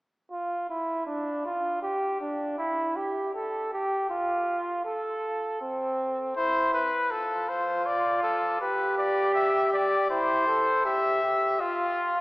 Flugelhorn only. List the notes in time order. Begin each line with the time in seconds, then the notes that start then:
0.31 F4
0.70 E4
1.07 D4
1.46 F4
1.82 G4
2.21 D4
2.58 E4
2.96 G4
3.34 A4
3.73 G4
4.10 F4
4.85 A4
5.61 C4
6.36 E4
7.11 F4
8.61 G4
10.10 E4
10.48 A4
10.86 G4
11.23 G4
11.60 F4